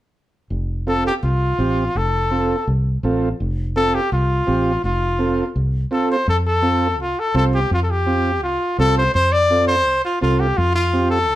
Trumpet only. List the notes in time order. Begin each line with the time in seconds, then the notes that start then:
0.88 A4
1.07 G4
1.24 F4
1.97 A4
3.77 A4
3.94 G4
4.12 F4
4.84 F4
5.93 A4
6.11 C5
6.29 A4
6.47 A4
7.02 F4
7.19 A4
7.37 A4
7.54 G4
7.73 F4
7.83 A4
7.90 G4
8.43 F4
8.79 A4
8.97 C5
9.14 C5
9.32 D5
9.67 C5
10.05 F4
10.22 F4
10.40 G4
10.57 F4
10.75 F4
11.10 A4